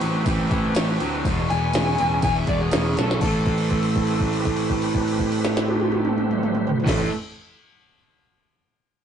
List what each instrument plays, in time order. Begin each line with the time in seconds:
Already playing: tonewheel organ C4 G4 B4
0.00 picked electric bass A1, overdriven electric guitar A2 F#3, ride
0.26 picked electric bass A1, overdriven electric guitar A2 E3, kick, ride
0.50 picked electric bass A1, overdriven electric guitar A2 E3, kick, ride
0.75 picked electric bass A1, overdriven electric guitar A2 F#3, snare, ride
1.00 picked electric bass D2, overdriven electric guitar A2 F#3, ride
1.24 picked electric bass E1, overdriven electric guitar E2 B2, tonewheel organ D#4 A4 C5, kick, ride
1.40 tonewheel organ D4 G#4 B4
1.50 picked electric bass E1, overdriven electric guitar E2 B2, electric slide guitar G#5, ride
1.73 picked electric bass E1, overdriven electric guitar E2 C#3, snare, ride
1.98 picked electric bass E1, overdriven electric guitar E2 C#3, ride
2.22 picked electric bass E1, overdriven electric guitar E2 B2, electric slide guitar G#5, kick, ride
2.36 electric slide guitar E5
2.47 picked electric bass E1, overdriven electric guitar E2 B2, electric slide guitar D5, kick, ride
2.61 electric slide guitar G#4
2.71 picked electric bass E1, overdriven electric guitar E2 C#3, snare, ride
2.97 picked electric bass B1, overdriven electric guitar E2 C#3, electric slide guitar A4, snare, ride
3.11 snare
3.21 picked electric bass A1, overdriven electric guitar A2 E3, tonewheel organ C#4 G#4 C5, electric slide guitar A4, kick, crash
3.25 overdriven electric guitar A3
3.39 tonewheel organ C4 G4 B4
3.46 kick, crash
3.58 crash
3.70 kick, crash
3.83 crash
3.95 kick, crash
4.07 crash
4.21 kick, crash
4.33 crash
4.45 kick, crash
4.57 crash
4.70 kick, crash
4.82 crash
4.95 kick, crash
5.08 crash
5.19 kick, crash
5.32 crash
5.45 snare
5.57 snare
5.68 high tom
5.80 high tom
5.92 high tom
6.05 mid tom
6.18 mid tom
6.31 mid tom
6.43 mid tom
6.55 mid tom
6.67 floor tom
6.80 overdriven electric guitar A2, tonewheel organ B4, floor tom
6.84 picked electric bass A1, overdriven electric guitar E3 A3, tonewheel organ C4 G4, electric slide guitar A4, kick, crash
6.89 snare